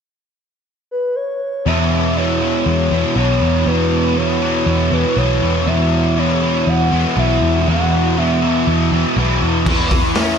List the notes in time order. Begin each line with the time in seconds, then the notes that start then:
0.91 B4
1.16 C#5
1.66 E2 B2 E3 E5
2.15 E2 B2 E3 C#5
2.41 B2 E3
2.66 E2 C#5
2.91 E2 B2 E3
3.15 B1 E2 B2 E3 C#5
3.42 E2
3.66 E2 B2 E3 B4
4.17 E2 B2 E3 C#5
4.42 B2 E3
4.67 E2
4.92 E2 B2 E3 B4
5.17 B1 E2 B2 E3 C#5
5.42 E2
5.66 E2 B2 E3 E5
6.17 E2 B2 E3 C#5
6.42 B2 E3
6.67 E2 F#5
6.92 E2 B2 E3
7.17 B1 E2 B2 E3 E5
7.42 E2
7.67 E2 B2 E3 F#5
8.17 E2 B2 E3 E5
8.42 B2 E3
8.67 E2
8.92 E2 B2 E3
9.17 B1 E2 B2 E3
9.42 E2
9.66 E2 E3, kick, crash
9.91 kick, open hi-hat
10.15 C#4 E5, snare, open hi-hat